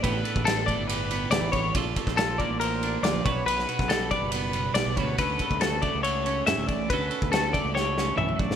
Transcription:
<<
  \new Staff \with { instrumentName = "Clean electric guitar" } { \time 4/4 \key d \major \tempo 4 = 140 b'4 a'8 d''8 b'4 d''8 cis''8 | r4 a'8 d''8 bes'4 d''8 cis''8 | b'4 a'8 d''8 b'4 d''8 cis''8 | b'4 a'8 d''8 cis''4 e''8 d''8 |
b'4 a'8 d''8 cis''4 e''8 d''8 | }
  \new Staff \with { instrumentName = "Clean electric guitar" } { \time 4/4 \key d \major << { <b d' g'>8 a'8 d'4 g'8 b4. | <d' f' a'>8 a'8 f'4 c''8 d'4 <b fis' b'>8 | b'8 fis'4 b'8 b4. <b fis' b'>8 | <cis' fis' a'>8 a'8 fis'4 a'8 cis'4. |
<cis' fis' a'>8 a'8 fis'4 g'16 a'16 cis'4. | } \\ { a,4. a4. e4 | r4. bes4. f8 b,8~ | b,4 g4. b,4 b,8 | r4. a4. a,4 |
r4. a4. e8 fis8 | } >> }
  \new Staff \with { instrumentName = "Fingered electric bass" } { \clef bass \time 4/4 \key d \major a,,8 r16 a,,4 g,,4~ g,,16 d,16 a,,16 a,,8 | bes,,8 r16 bes,,4 a,,4~ a,,16 d,16 bes,,16 b,,8 | b,,8 r16 b,,4 fis,,4~ fis,,16 b,,16 b,,16 d,8 | d,8 r16 d,4 cis,4~ cis,16 fis,16 d,16 a,,8 |
d,8 r16 d,4 cis,4~ cis,16 b,,8 a,,8 | }
  \new DrumStaff \with { instrumentName = "Drums" } \drummode { \time 4/4 <bd cymr>8 cymr16 bd16 <cymr sn>8 <bd cymr>8 cymr8 cymr8 <cymr sn>8 <bd cymr>8 | <bd cymr>8 <bd cymr>16 <bd sn>16 <cymr sn>8 <bd cymr>8 cymr8 cymr8 <cymr sn>8 <bd cymr>8 | cymr16 sn16 cymr16 <bd sn>16 <cymr sn>8 <bd cymr>8 cymr8 cymr8 <cymr sn>8 <bd cymr>8 | <bd cymr>8 <bd cymr>16 bd16 <cymr sn>8 <bd cymr>8 cymr8 cymr8 <cymr sn>8 <bd cymr>8 |
<bd cymr>8 cymr16 bd16 <cymr sn>8 <bd cymr>8 sn8 sn8 toml16 toml16 bd16 sn16 | }
>>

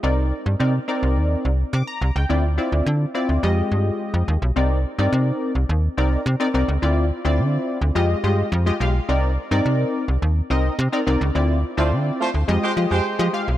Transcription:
<<
  \new Staff \with { instrumentName = "Horn section" } { \time 4/4 \key c \minor \tempo 4 = 106 r1 | r1 | r1 | r1 |
r1 | r8. <a f' c''>16 r8 <a f' c''>16 r8 <aes g' c''>16 r16 <aes g' c''>8. r8 | }
  \new Staff \with { instrumentName = "Analog polysynth" } { \time 4/4 \key c \minor << { r2. d'''16 bes''8 g''16~ | g''16 r2. r8. | r1 | r1 |
r1 | r1 | } \\ { <c' ees' bes' d''>8 r8 <c' ees' bes' d''>16 r16 <c' ees' bes' d''>4 r4. | <c' e' f' d''>16 r16 <c' e' f' d''>8 r8 <c' e' f' d''>8 <aes f' g' ees''>4. r8 | <c' ees' bes' d''>8 r16 <c' ees' bes' d''>4 r8. <c' ees' bes' d''>8 r16 <c' ees' bes' d''>16 <c' ees' bes' d''>16 r16 | <c' e' f' d''>8 r16 <c' e' f' d''>4 r16 <aes f' g' ees''>8 <aes f' g' ees''>8 r16 <aes f' g' ees''>16 <aes f' g' f''>16 r16 |
<c' ees' bes' d''>8 r16 <c' ees' bes' d''>4 r8. <c' ees' bes' ees''>8 r16 <c' ees' bes' d''>16 <c' ees' bes' d''>16 r16 | <c' e' f' d''>8 r16 <c' e' f' d''>4 r16 <aes f' g' ees''>8 <aes f' g' ees''>8 r16 <aes f' g' ees''>16 <aes f' g' f''>16 r16 | } >> }
  \new Staff \with { instrumentName = "FM bass" } { \clef bass \time 4/4 \key c \minor c,8. g,16 c8 r16 c,16 ees,8 c,8 c16 r16 c,16 des,16 | d,8. d,16 d8 r16 d,16 f,8 g,8 r16 f,16 ees,16 b,,16 | c,8. g,16 c8 r16 c,16 ees,8 c,8 c16 r16 c,16 des,16 | d,8. d,16 d8 r16 d,16 f,8 g,8 f,8 b,,8 |
c,8. g,16 c8 r16 c,16 ees,8 c,8 c16 r16 c,16 des,16 | d,8. d,16 d8 r16 d,16 f,16 r16 f16 f,16 r16 f16 r16 b,,16 | }
>>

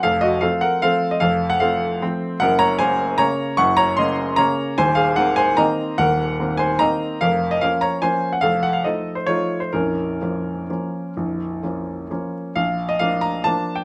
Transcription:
<<
  \new Staff \with { instrumentName = "Grand piano" } { \time 3/4 \key bes \minor \tempo 4 = 147 <a' f''>8 <ges' ees''>8 <a' f''>8 <bes' ges''>8 <a' f''>8. ees''16 | <a' f''>8. ges''16 <a' f''>4 r4 | <bes' ges''>8 <des'' bes''>8 <c'' aes''>4 <des'' bes''>4 | <ges'' des'''>8 <des'' bes''>8 <ees'' c'''>4 <des'' bes''>4 |
<c'' aes''>8 <aes' f''>8 <bes' ges''>8 <c'' aes''>8 <ees'' bes''>4 | <bes' ges''>4. <c'' aes''>8 <ees'' bes''>4 | <bes' f''>8. ees''16 <bes' f''>8 <des'' bes''>8 <c'' aes''>8. ges''16 | <a' f''>8 ges''16 f''16 <a' ees''>8. c''16 <f' des''>8. c''16 |
<des' bes'>2.~ | <des' bes'>2~ <des' bes'>8 r8 | \key bes \major f''8. ees''16 f''8 bes''8 a''8. g''16 | }
  \new Staff \with { instrumentName = "Grand piano" } { \clef bass \time 3/4 \key bes \minor <f,, f,>4 <f a c'>4 <f a c'>4 | <f,, f,>4 <f a c'>4 <f a c'>4 | <ges,, ges,>4 <des bes>4 <des bes>4 | <ges,, ges,>4 <des bes>4 <des bes>4 |
<ees,, ees,>4 <ees bes c'>4 <ees bes c'>4 | <ees,, ees,>4 <ees bes c'>4 <ees bes c'>4 | <f,, f,>4 <f bes des'>4 <f bes des'>4 | <f,, f,>4 <f a ees'>4 <f a ees'>4 |
<bes,,, bes,,>4 <f bes des'>4 <f bes des'>4 | <bes,,, bes,,>4 <f bes des'>4 <f bes des'>4 | \key bes \major bes,,4 <f bes d'>4 <f bes d'>4 | }
>>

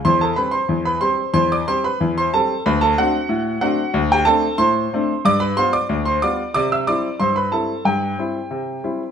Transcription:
<<
  \new Staff \with { instrumentName = "Grand piano" } { \time 2/4 \key c \major \tempo 4 = 92 <c'' c'''>16 <a' a''>16 <b' b''>16 <c'' c'''>8 <b' b''>16 <c'' c'''>8 | <c'' c'''>16 <d'' d'''>16 <c'' c'''>16 <b' b''>8 <c'' c'''>16 <a' a''>8 | <b' b''>16 <a' a''>16 <fis' fis''>4 <fis' fis''>8~ | <fis' fis''>16 <g' g''>16 <a' a''>8 <c'' c'''>4 |
<d'' d'''>16 <b' b''>16 <c'' c'''>16 <d'' d'''>8 <c'' c'''>16 <d'' d'''>8 | <d'' d'''>16 <e'' e'''>16 <d'' d'''>8 <c'' c'''>16 <b' b''>16 <a' a''>8 | <g' g''>2 | }
  \new Staff \with { instrumentName = "Grand piano" } { \time 2/4 \key c \major e,8 <g c' g'>8 e,8 <g c' g'>8 | e,8 <g c' g'>8 e,8 <g c' g'>8 | d,8 <a c' d'>8 a,8 <a c' d'>8 | d,8 <a c' d'>8 a,8 <a c' d'>8 |
g,8 <g b f'>8 d,8 <g b f'>8 | c8 <g c' e'>8 g,8 <g c' e'>8 | g,8 <g c' e'>8 c8 <g c' e'>8 | }
>>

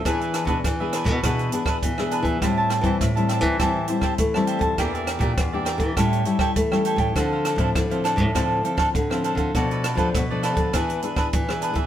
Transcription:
<<
  \new Staff \with { instrumentName = "Cavaquinho" } { \time 4/4 \key e \phrygian \tempo 4 = 101 <d' gis' b' e''>16 <gis' b' e''>16 <d' gis' b' e''>16 <d' gis' b' e''>16 r16 <gis' b' e''>16 <d' gis' b' e''>8 <d' gis' b' e''>8 <d' gis' b' e''>16 <d' gis' b' e''>16 r16 <gis' b' e''>16 <d' gis' b' e''>16 <gis' b' e''>16 | <g' c'' e'' a''>16 <c'' e'' a''>16 <g' c'' e'' a''>16 <g' c'' e'' a''>16 r16 <c'' e'' a''>16 <g' c'' e'' a''>8 <g' c'' e'' a''>8 <g' c'' e'' a''>16 <g' c'' e'' a''>16 r16 <c'' e'' a''>16 <g' c'' e'' a''>16 <c'' e'' a''>16 | <g' bes' d'' e''>16 <bes' d'' e''>16 <g' bes' d'' e''>16 <g' bes' d'' e''>16 r16 <bes' d'' e''>16 <g' bes' d'' e''>8 <g' a' cis'' g''>8 <g' a' cis'' g''>16 <g' a' cis'' g''>16 r16 <a' cis'' g''>16 <g' a' cis'' g''>16 <a' cis'' g''>16 | <d' a' c'' f''>16 <a' c'' f''>16 <d' a' c'' f''>16 <d' a' c'' f''>16 r16 <a' c'' f''>16 <d' a' c'' f''>8 <d' a' c'' f''>8 <d' a' c'' f''>16 <d' a' c'' f''>16 r16 <a' c'' f''>16 <d' a' c'' f''>16 <a' c'' f''>16 |
<f' a' b' d''>16 <a' b' d''>16 <f' a' b' d''>16 <f' a' b' d''>16 r16 <a' b' d''>16 <f' a' b' d''>8 <d' gis' b' e''>8 <d' gis' b' e''>16 <d' gis' b' e''>16 r16 <gis' b' e''>16 <d' gis' b' e''>16 <gis' b' e''>16 | }
  \new Staff \with { instrumentName = "Nylon-string guitar" } { \time 4/4 \key e \phrygian << { <b d' gis'>8. <b d' gis'>8 <b d' gis'>8. <b d' gis'>8 <b d' gis'>8. <b d' gis'>8. | <g c' e'>8. <g c' e'>8 <g c' e'>8. <g c' e'>16 r16 <g c' e'>8 r16 <g c' e'>8. | <bes d' g'>8. <bes d' g'>8 <bes d' g'>8. <g cis' e'>8 <g cis' e'>8 r16 <g cis' e'>8. | <f c' e'>8. <f c' e'>8 <f c' e'>8. <f c' e'>8 <f c' e'>8 r16 <f c' e'>8. |
<f a d'>8 r16 <f a d'>8 <f a d'>8. <b d' gis'>16 r16 <b d' gis'>8. <b d' gis'>8. | } \\ { e4 b,4 e4 b,4 | a,4 e4 a,4 e4 | e4 e4 a,4 e4 | d4 a,4 d4 a,4 |
b,4 b,4 e4 b,4 | } >> }
  \new Staff \with { instrumentName = "Nylon-string guitar" } { \clef bass \time 4/4 \key e \phrygian e8. b,16 e8. b,16 b,8 r8 e8. e16 | a,8. e16 a,8. e16 e8 r8 a8. f,16 | e,8. bes,16 e,8. e16 a,8 r8 a8. a,16 | d8. a,16 d8. a,16 a,8 r8 d8. d16 |
b,8. f16 b,8. d16 e8 r8 e8. e16 | }
  \new DrumStaff \with { instrumentName = "Drums" } \drummode { \time 4/4 <hh bd ss>16 hh16 <hh ss>16 <hh bd>16 <hh bd ss>8 <hh ss>16 <hh bd>16 <hh bd ss>16 hh16 hh16 <bd ss>16 <hh bd>16 ss16 hh16 <hh bd>16 | <hh bd ss>8 <hh ss>16 <hh bd>16 <hh bd ss>16 hh16 <hh ss>16 <hh bd>16 <hh bd ss>8 hh16 <bd ss>16 <hh bd>16 ss16 hh16 <hh bd>16 | <hh bd ss>16 hh16 <hh ss>16 <hh bd>16 <hh bd ss>8 <hh ss>16 <hh bd>16 <hh bd ss>16 hh16 hh16 <bd ss>16 <hh bd>16 ss16 hh16 <hh bd>16 | <hh bd ss>8 <hh ss>16 <hh bd>16 <hh bd ss>16 hh16 <hh ss>16 <hh bd>16 <hh bd ss>8 hh16 <bd ss>16 <hh bd>16 ss16 hh16 <hh bd>16 |
<hh bd ss>16 hh16 <hh ss>16 <hh bd>16 <hh bd ss>8 <hh ss>16 <hh bd>16 <hh bd ss>16 hh16 hh16 <bd ss>16 <hh bd>16 ss16 hh16 <hh bd>16 | }
>>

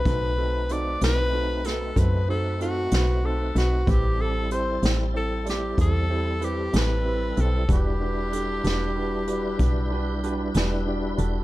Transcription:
<<
  \new Staff \with { instrumentName = "Tenor saxophone" } { \time 12/8 \key e \minor \tempo 4. = 63 b'4 d''8 b'4 a'8 b'8 a'8 fis'4 a'8 fis'8 | g'8 a'8 c''8 r8 a'8 g'8 a'4 g'8 b'4 a'8 | g'1~ g'4 r4 | }
  \new Staff \with { instrumentName = "Grand piano" } { \time 12/8 \key e \minor <c' dis' fis' a'>8 <c' dis' fis' a'>8 <c' dis' fis' a'>8 <c' dis' fis' b'>8 <c' dis' fis' a'>8 <c' dis' fis' b'>8 <c' dis' fis' a'>8 <c' dis' fis' c''>8 <c' dis' fis' a'>8 <c' dis' fis' b'>8 <c' dis' fis' a'>8 <c' dis' fis' b'>8 | <c' e' g' b'>8 <c' e' g' a'>8 <c' e' g' c''>8 <c' e' g' c''>8 <c' e' g' c''>8 <c' e' g' d''>8 <c' e' g' a'>8 <c' e' g' c''>8 <c' e' g' b'>8 <c' e' g' a'>8 <c' e' g' b'>8 <c' e' g' b'>8 | <d' fis' g' b'>8 <d' fis' g' b'>8 <d' fis' g' a'>8 <d' fis' g' b'>8 <d' fis' g' b'>8 <d' fis' g' b'>8 <d' fis' g' b'>8 <d' fis' g' b'>8 <d' fis' g' b'>8 <d' fis' g' b'>8 <d' fis' g' d''>8 <d' fis' g' a'>8 | }
  \new Staff \with { instrumentName = "Tonewheel organ" } { \time 12/8 \key e \minor <a c' dis' b'>1. | <g c' e' a'>1. | <g d' e' b'>1. | }
  \new Staff \with { instrumentName = "FM bass" } { \clef bass \time 12/8 \key e \minor b,,4. b,,4. fis,4. b,,4 b,,8 | a,,4. a,,4. e,4. a,,4 b,,8 | e,,4. e,,4. b,,4. e,,4 e,,8 | }
  \new DrumStaff \with { instrumentName = "Drums" } \drummode { \time 12/8 <hh bd>4 hh8 <hh sn>4 <hh sn>8 <hh bd>4 hh8 <hh sn>4 <hh sn>8 | <hh bd>4 hh8 <hh sn>4 <hh sn>8 <hh bd>4 hh8 <hh sn>4 hh8 | <hh bd>4 hh8 <hh sn>4 hh8 <hh bd>4 hh8 <hh sn>4 hh8 | }
>>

